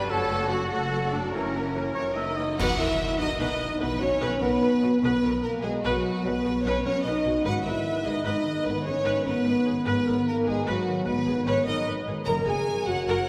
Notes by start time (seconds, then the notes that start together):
Already playing: F#2 C#4 B4
0.00 F#4
0.04 F#1 F#4 A4
0.09 F#3 A3 C#4 F#4 A4 C#5 A5
0.31 F#3 A3
0.50 F#3 A3 F#4 A4 F#5
0.70 F#1 F#3 A3 C#4 F#4 A4 F#5
0.93 F#3 A3
1.10 F#3 A3 D4 F#4 D5
1.15 F#2
1.19 C#4
1.24 E4
1.28 A#4
1.32 F#1 E3 A#3 C#4 E4 A#4 C#5
1.55 E3 A#3
1.76 E3 A#3
1.94 F#1 E3 A#3 C#4 C#5
2.16 E3 A#3 D#4 D#5 E5
2.37 E3 A#3 D#5
2.58 B1 B2 F#4 B4 F#5, concert bass drum, crash
2.69 F#3
2.77 B1 B2 B3 E4 A#4 E5
2.90 D#3
3.00 B4
3.10 D#4
3.18 B1 B2 D#4 F#4 D#5
3.30 B5
3.36 D#4 B4 D#5
3.40 B1 B2 D#5
3.50 B4
3.60 D#4
3.70 B3
3.79 B1 B2 B3 B4
3.91 F#3
3.99 B1 B2 B3 C#4 F#4 C#5
4.11 D#4
4.21 B1 B2 B4
4.39 B1 B2 B3 A#4 B4 F#5
4.52 B5
4.61 B1 B2 B4
4.72 B4
4.82 B1 B2 F#4
4.93 B3
5.01 B1 B2 B3 B4
5.13 F#3
5.23 B1 B2 B3 A#4
5.43 A#3 A#4 B4
5.63 B1 B2 G#3 F#4 G#4
5.73 B5
5.82 B1 B2 F#3 F#4 B4
5.94 B4
6.15 B3
6.23 B1 B2 B3 B4
6.34 F#3
6.44 B1 B2 B3 F#4
6.62 B1 B2 B4 C#5
6.66 C#4 B4
6.84 B1 B2 C#4 A#4 C#5
6.95 B5
7.03 B1 B2 D#5
7.07 D#4 B4
7.15 B4
7.25 B1 B2 F#4
7.35 B3
7.44 G#1 G#2 F#4 B4 F#5
7.54 D#3
7.64 G#1 G#2 B3 A#4 E5
7.69 E4
7.75 D#3
7.85 B4
7.95 B3
8.04 G#1 G#2 G#4 B4 D#5
8.08 D#4
8.15 B5
8.23 G#1 G#2 B4 D#5
8.27 D#4
8.35 B3
8.45 D#3
8.54 B3
8.64 G#1 G#2 B4
8.69 B3
8.75 D#3
8.85 G#1 G#2 B3 G#4 C#5
8.89 C#4
8.95 D#3
9.04 G#1 G#2 B4
9.16 B3
9.25 G#1 G#2 B3 A#4 B4
9.36 B5
9.44 G#1 G#2 B4
9.56 B3
9.65 G#1 G#2 D#3 G#4
9.76 B3
9.86 G#1 G#2 B3 B4
9.96 D#3
10.06 G#1 G#2 B3 A#4
10.17 D#3
10.26 A#3 A#4 B4
10.36 B3
10.46 G#1 G#2 G#3 G#4 B4
10.56 B5
10.66 G#1 G#2 F#3 F#4 B4
10.77 B3
10.87 D#3
10.96 B3
11.05 G#1 G#2 B3 B4
11.16 D#3
11.26 G#1 G#2 B3 G#4
11.37 D#3
11.45 G#1 G#2 C#4 B4 C#5
11.56 B3
11.65 G#1 G#2 D#4 A#4 B4 D#5
11.76 B5
11.86 G#1 G#2 B4
11.97 B3
12.06 G#1 G#2 D#3 G#4
12.17 B3
12.25 F#1 F#2 A#4 C#5 A#5
12.38 C#3
12.46 F#1 F#2 A#3 G#4 G#5
12.58 C#4
12.67 F#4
12.77 A#4
12.86 F#1 F#2 F#4 C#5 F#5
12.97 F#5
13.05 F#1 F#2 F#4 A#4 C#5 F#5